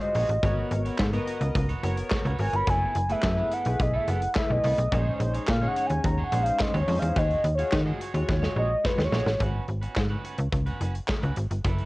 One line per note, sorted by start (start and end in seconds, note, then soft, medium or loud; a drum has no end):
0.00 0.29 G#3 medium
0.00 0.29 F4 medium
0.00 0.29 F#4 medium
0.00 0.29 C5 medium
0.00 0.82 D#5 medium
0.00 muted clean electric guitar stroke soft
0.00 closed hi-hat soft
0.15 0.25 A#1 loud
0.15 0.33 F#4 medium
0.15 0.29 G#4 medium
0.15 0.28 C#5 medium
0.15 open hi-hat medium
0.29 0.39 A1 medium
0.29 muted clean electric guitar stroke soft
0.29 closed hi-hat medium
0.43 0.63 G#1 loud
0.43 0.95 B3 medium
0.43 0.96 F#4 medium
0.43 0.69 F#4 medium
0.43 0.96 A#4 medium
0.43 0.69 B4 medium
0.43 0.96 C#5 medium
0.43 0.70 C#5 medium
0.43 kick loud
0.43 closed hi-hat medium
0.71 0.91 G#1 loud
0.71 muted clean electric guitar stroke soft
0.71 closed hi-hat medium
0.85 0.98 F#4 medium
0.85 0.99 B4 medium
0.85 0.99 C#5 medium
0.85 closed hi-hat medium
0.98 1.19 G#2 loud
0.98 kick loud
0.98 snare loud
0.98 clap medium
1.13 1.66 B3 loud
1.13 1.66 F#4 medium
1.13 1.26 F#4 medium
1.13 1.66 A#4 medium
1.13 1.27 B4 medium
1.13 1.27 C#5 medium
1.13 1.66 D#5 loud
1.13 closed hi-hat soft
1.27 1.41 F#4 medium
1.27 1.41 B4 medium
1.27 1.40 C#5 medium
1.27 closed hi-hat medium
1.41 1.51 C#2 medium
1.41 muted clean electric guitar stroke soft
1.41 closed hi-hat medium
1.55 1.75 C#2 medium
1.55 muted clean electric guitar stroke soft
1.55 kick loud
1.55 closed hi-hat medium
1.69 1.82 F#4 medium
1.69 1.83 B4 medium
1.69 1.83 C#5 medium
1.69 closed hi-hat soft
1.83 2.03 F#1 medium
1.83 2.25 B3 loud
1.83 1.97 F#4 medium
1.83 2.25 F#4 medium
1.83 2.25 A#4 medium
1.83 1.97 B4 medium
1.83 2.26 C#5 loud
1.83 1.96 C#5 medium
1.83 closed hi-hat medium
1.97 muted clean electric guitar stroke soft
1.97 closed hi-hat medium
2.10 muted clean electric guitar stroke soft
2.10 kick loud
2.10 snare loud
2.10 clap medium
2.25 2.35 C#2 medium
2.25 2.38 F#4 medium
2.25 2.38 B4 medium
2.25 2.39 C#5 medium
2.25 closed hi-hat soft
2.39 2.49 G#1 medium
2.39 2.67 B3 medium
2.39 2.68 F#4 medium
2.39 2.68 A#4 medium
2.39 2.68 C#5 loud
2.39 2.57 G#5 loud
2.39 muted clean electric guitar stroke soft
2.39 open hi-hat medium
2.53 2.63 G1 medium
2.53 2.71 B5 loud
2.53 muted clean electric guitar stroke soft
2.53 closed hi-hat medium
2.67 2.87 F#1 loud
2.67 2.93 B3 medium
2.67 2.93 E4 medium
2.67 2.94 A4 medium
2.67 3.13 G#5 loud
2.67 kick loud
2.67 closed hi-hat medium
2.95 3.15 F#1 medium
2.95 muted clean electric guitar stroke soft
2.95 closed hi-hat medium
3.09 3.52 A3 medium
3.09 3.22 B3 medium
3.09 3.52 E4 medium
3.09 3.23 E4 medium
3.09 3.52 G#4 medium
3.09 3.23 A4 medium
3.09 3.52 B4 medium
3.09 3.55 E5 loud
3.09 closed hi-hat soft
3.22 3.43 F#2 loud
3.22 kick loud
3.22 snare loud
3.22 clap medium
3.37 3.50 B3 medium
3.37 3.51 E4 medium
3.37 3.52 B4 medium
3.52 3.65 B3 medium
3.52 3.66 E4 medium
3.52 3.65 A4 medium
3.52 3.83 F#5 loud
3.52 closed hi-hat medium
3.65 3.76 B1 medium
3.65 4.18 A3 medium
3.65 4.18 E4 medium
3.65 4.18 G#4 medium
3.65 4.18 B4 medium
3.65 muted clean electric guitar stroke soft
3.65 closed hi-hat medium
3.80 3.99 B1 loud
3.80 3.97 D#5 medium
3.80 muted clean electric guitar stroke soft
3.80 kick loud
3.80 closed hi-hat medium
3.93 4.06 B3 medium
3.93 4.07 E4 medium
3.93 4.08 A4 medium
3.93 4.11 E5 medium
4.08 4.27 F#1 loud
4.08 4.21 B3 medium
4.08 4.21 E4 medium
4.08 4.20 A4 medium
4.08 4.37 F#5 loud
4.08 closed hi-hat medium
4.22 muted clean electric guitar stroke medium
4.22 closed hi-hat medium
4.35 4.78 A3 medium
4.35 4.78 E4 medium
4.35 4.78 G#4 medium
4.35 4.78 B4 medium
4.35 4.53 E5 medium
4.35 muted clean electric guitar stroke soft
4.35 kick loud
4.35 snare loud
4.35 clap medium
4.50 4.60 B1 medium
4.50 5.35 D#5 loud
4.50 muted clean electric guitar stroke soft
4.63 4.74 C2 loud
4.63 4.81 B3 medium
4.63 4.78 E4 medium
4.63 4.76 A4 medium
4.63 open hi-hat medium
4.78 4.88 B1 medium
4.78 muted clean electric guitar stroke soft
4.78 closed hi-hat medium
4.92 5.11 A#1 loud
4.92 5.44 G#3 medium
4.92 5.44 C#4 medium
4.92 5.18 D#4 medium
4.92 5.45 D#4 medium
4.92 5.18 G#4 medium
4.92 5.45 C5 medium
4.92 5.18 C#5 medium
4.92 kick loud
4.92 closed hi-hat medium
5.20 5.39 A#1 medium
5.20 muted clean electric guitar stroke soft
5.20 closed hi-hat medium
5.34 5.47 D#4 medium
5.34 5.47 G#4 medium
5.34 5.48 C#5 medium
5.34 closed hi-hat medium
5.47 5.68 A#2 loud
5.47 5.69 F5 medium
5.47 kick loud
5.47 snare loud
5.47 clap medium
5.61 6.14 G#3 medium
5.61 6.15 C#4 medium
5.61 6.15 D#4 medium
5.61 5.74 D#4 medium
5.61 5.75 G#4 medium
5.61 5.76 C#5 medium
5.61 6.15 C#5 medium
5.67 5.88 F#5 loud
5.75 5.89 D#4 medium
5.75 5.90 G#4 medium
5.75 5.88 C#5 medium
5.75 closed hi-hat medium
5.86 6.00 D#2 medium
5.86 6.07 G#5 loud
5.86 muted clean electric guitar stroke soft
5.86 closed hi-hat soft
6.04 6.24 D#2 loud
6.04 6.23 A#5 medium
6.04 muted clean electric guitar stroke soft
6.04 kick loud
6.04 closed hi-hat medium
6.18 6.30 D#4 medium
6.18 6.31 G#4 medium
6.18 6.32 C#5 medium
6.24 6.44 F#5 medium
6.32 6.52 A#1 loud
6.32 6.74 G#3 medium
6.32 6.74 C#4 medium
6.32 6.46 D#4 medium
6.32 6.74 D#4 medium
6.32 6.46 G#4 medium
6.32 6.74 C5 loud
6.32 6.45 C#5 medium
6.32 closed hi-hat medium
6.43 6.63 F5 medium
6.43 muted clean electric guitar stroke soft
6.43 closed hi-hat medium
6.59 6.79 D#5 medium
6.59 muted clean electric guitar stroke soft
6.59 kick loud
6.59 snare loud
6.59 clap medium
6.74 6.84 D#2 loud
6.74 6.87 D#4 medium
6.74 6.88 G#4 medium
6.74 6.88 C#5 medium
6.74 closed hi-hat soft
6.80 7.00 C#5 medium
6.88 6.98 F2 loud
6.88 7.16 G#3 medium
6.88 7.16 C#4 medium
6.88 7.16 D#4 medium
6.88 7.17 C5 loud
6.88 open hi-hat medium
6.99 7.12 E2 medium
6.99 7.19 F5 medium
6.99 muted clean electric guitar stroke medium
6.99 closed hi-hat medium
7.16 7.36 D#2 loud
7.16 7.42 F#4 medium
7.16 7.42 G#4 loud
7.16 7.42 C#5 medium
7.16 7.54 D#5 loud
7.16 kick loud
7.16 closed hi-hat medium
7.30 closed hi-hat soft
7.44 7.64 D#2 medium
7.44 muted clean electric guitar stroke soft
7.44 closed hi-hat medium
7.55 8.00 G#3 medium
7.55 8.00 F4 medium
7.55 8.00 F#4 medium
7.55 7.71 G#4 medium
7.55 7.80 C#5 medium
7.55 7.72 C#5 medium
7.55 8.00 C#5 medium
7.55 closed hi-hat medium
7.59 7.71 F#4 medium
7.71 7.92 D#3 loud
7.71 kick loud
7.71 snare loud
7.71 clap medium
7.85 7.98 F#4 medium
7.85 7.99 G#4 medium
7.85 8.01 D#5 medium
8.00 8.14 F#4 medium
8.00 8.13 G#4 medium
8.00 8.12 C#5 medium
8.00 closed hi-hat medium
8.14 8.24 D#2 loud
8.14 8.66 G#3 loud
8.14 8.67 F4 medium
8.14 8.67 F#4 medium
8.14 8.67 C#5 loud
8.14 muted clean electric guitar stroke medium
8.14 closed hi-hat soft
8.28 8.48 D#2 loud
8.28 muted clean electric guitar stroke medium
8.28 kick loud
8.28 snare medium
8.42 8.54 F#4 medium
8.42 8.55 G#4 medium
8.42 8.56 C#5 medium
8.42 snare medium
8.55 8.76 A#1 loud
8.55 8.70 F#4 medium
8.55 8.69 G#4 medium
8.55 8.68 C#5 medium
8.55 8.87 D#5 loud
8.70 muted clean electric guitar stroke soft
8.84 9.26 G#3 medium
8.84 9.26 F4 medium
8.84 9.26 F#4 medium
8.84 9.06 B4 loud
8.84 8.91 C5 medium
8.84 muted clean electric guitar stroke soft
8.84 kick loud
8.84 snare medium
8.91 9.30 C#5 medium
8.98 9.08 D#2 medium
8.98 muted clean electric guitar stroke soft
8.98 snare medium
9.05 9.41 C#5 medium
9.12 9.22 A#1 loud
9.12 9.30 F#4 medium
9.12 9.26 G#4 medium
9.12 9.24 C#5 loud
9.12 snare loud
9.26 9.36 A1 medium
9.26 muted clean electric guitar stroke soft
9.26 snare medium
9.39 9.60 G#1 loud
9.39 9.66 C#4 medium
9.39 9.66 F#4 medium
9.39 9.66 B4 medium
9.39 kick loud
9.39 closed hi-hat medium
9.68 9.88 G#1 medium
9.68 muted clean electric guitar stroke soft
9.68 closed hi-hat medium
9.82 9.95 C#4 soft
9.82 9.95 F#4 medium
9.82 9.96 B4 medium
9.82 closed hi-hat soft
9.96 10.16 G#2 loud
9.96 muted clean electric guitar stroke soft
9.96 kick loud
9.96 snare loud
9.96 clap medium
10.10 10.23 C#4 medium
10.10 10.23 F#4 medium
10.10 10.24 B4 medium
10.24 10.38 C#4 medium
10.24 10.38 F#4 medium
10.24 10.37 B4 medium
10.24 closed hi-hat medium
10.38 10.48 C#2 loud
10.38 muted clean electric guitar stroke soft
10.38 closed hi-hat soft
10.52 10.72 C#2 medium
10.52 muted clean electric guitar stroke soft
10.52 kick loud
10.52 closed hi-hat medium
10.66 10.79 C#4 medium
10.66 10.80 F#4 medium
10.66 10.80 B4 medium
10.66 closed hi-hat soft
10.80 11.00 F#1 medium
10.80 10.94 C#4 medium
10.80 10.95 F#4 medium
10.80 10.93 B4 medium
10.80 closed hi-hat medium
10.95 muted clean electric guitar stroke soft
10.95 closed hi-hat soft
11.08 muted clean electric guitar stroke soft
11.08 kick loud
11.08 snare loud
11.08 clap medium
11.22 11.33 C#2 medium
11.22 11.35 C#4 medium
11.22 11.36 F#4 medium
11.22 11.36 B4 medium
11.22 closed hi-hat soft
11.36 11.47 G#1 medium
11.36 muted clean electric guitar stroke soft
11.36 closed hi-hat medium
11.51 11.61 G1 medium
11.51 muted clean electric guitar stroke soft
11.51 closed hi-hat medium
11.64 11.84 F#1 loud
11.64 11.85 E4 medium
11.64 11.85 A4 medium
11.64 11.85 B4 loud
11.64 kick loud
11.64 closed hi-hat medium
11.79 closed hi-hat soft